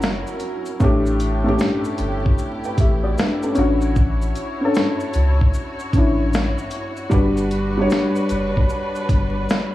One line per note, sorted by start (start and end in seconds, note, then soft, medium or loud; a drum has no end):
0.00 0.23 F#1 medium
0.00 0.77 F#3 medium
0.00 0.82 F#3 medium
0.00 0.77 C#4 medium
0.00 0.82 C#4 medium
0.00 0.77 E4 medium
0.00 0.83 E4 medium
0.00 0.73 F#4 loud
0.00 0.77 A#4 medium
0.00 0.83 A#4 medium
0.00 snare loud
0.00 shaker medium
0.27 shaker soft
0.40 closed hi-hat medium
0.40 shaker soft
0.66 shaker soft
0.80 1.56 A1 loud
0.80 1.37 A2 loud
0.80 3.54 A3 medium
0.80 1.37 A3 medium
0.80 1.38 D4 medium
0.80 7.08 E4 medium
0.80 3.54 G4 medium
0.80 kick loud
0.80 shaker medium
0.84 1.39 G4 loud
1.06 shaker soft
1.20 closed hi-hat medium
1.20 shaker soft
1.44 2.80 A2 medium
1.44 2.81 A3 medium
1.44 1.51 C#4 medium
1.48 2.40 G4 loud
1.53 2.42 D4 medium
1.59 snare loud
1.59 shaker medium
1.85 shaker medium
1.98 2.36 G1 loud
1.98 closed hi-hat medium
1.98 shaker medium
2.26 kick medium
2.38 shaker medium
2.64 2.78 B4 soft
2.64 2.78 G5 medium
2.64 shaker soft
2.78 3.15 A1 medium
2.78 3.04 G4 medium
2.78 3.03 E5 medium
2.78 kick loud
2.78 closed hi-hat medium
2.78 shaker soft
3.04 3.17 F#4 medium
3.04 3.17 D5 medium
3.18 3.42 D4 soft
3.18 3.42 B4 medium
3.18 snare loud
3.18 shaker medium
3.43 3.53 C#4 soft
3.43 3.81 A4 medium
3.43 shaker soft
3.55 4.32 A1 loud
3.55 4.46 C#4 medium
3.55 4.47 D4 medium
3.55 9.75 F#4 medium
3.55 7.09 C#5 medium
3.55 closed hi-hat medium
3.55 shaker soft
3.59 4.48 F#4 loud
3.81 shaker soft
3.96 kick loud
3.96 shaker medium
4.22 shaker soft
4.36 closed hi-hat medium
4.36 shaker soft
4.61 5.83 C#4 medium
4.61 5.84 D4 medium
4.65 5.85 A4 medium
4.75 snare loud
4.75 shaker medium
5.00 shaker soft
5.14 5.52 C#2 loud
5.14 closed hi-hat medium
5.14 shaker medium
5.41 kick medium
5.54 shaker medium
5.79 shaker soft
5.93 6.54 A1 loud
5.93 7.03 C#4 medium
5.93 7.04 D4 medium
5.93 kick loud
5.93 closed hi-hat medium
5.93 shaker medium
5.98 7.05 E4 loud
6.34 snare loud
6.34 shaker medium
6.58 shaker soft
6.71 closed hi-hat medium
6.71 shaker soft
6.97 shaker soft
7.10 7.87 G1 loud
7.10 7.67 G3 loud
7.10 9.75 G3 medium
7.10 7.68 D4 loud
7.10 9.75 D4 medium
7.10 7.69 F#4 loud
7.10 9.75 B4 loud
7.10 kick loud
7.10 shaker medium
7.14 7.69 B4 loud
7.37 shaker soft
7.51 closed hi-hat medium
7.51 shaker soft
7.77 9.12 G3 medium
7.77 9.13 D4 medium
7.77 9.14 F#4 medium
7.82 9.15 C#5 loud
7.90 snare loud
7.90 shaker medium
8.16 shaker soft
8.29 8.67 F#1 medium
8.29 closed hi-hat medium
8.29 shaker medium
8.57 kick medium
8.70 shaker medium
8.95 shaker soft
9.09 9.46 G1 medium
9.09 kick loud
9.09 closed hi-hat medium
9.09 shaker soft
9.49 snare loud
9.49 shaker medium